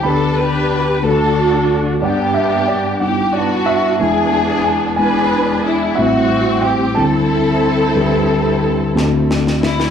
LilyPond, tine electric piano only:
<<
  \new Staff \with { instrumentName = "Tine electric piano" } { \time 6/8 \key g \major \tempo 4. = 61 <b d' g' b'>4 r8 <a d' fis' a'>4 r8 | <g b d' fis''>4 r8 <g b d' ees' e'>4 r8 | <gis b d' e'>4 r8 <gis b d' e'>4 r8 | <g a c' e'>4 r8 <g c' d' e'>4 r8 |
<g d' g' b'>4 r8 <a c' d' fis'>4 r8 | }
  \new Staff \with { instrumentName = "Tine electric piano" } { \clef bass \time 6/8 \key g \major <d, d>4. <d, d>4. | g,2. | <e, e>2. | <a,, a,>4. <d, d>4. |
<d, d>4. <d, d>4. | }
>>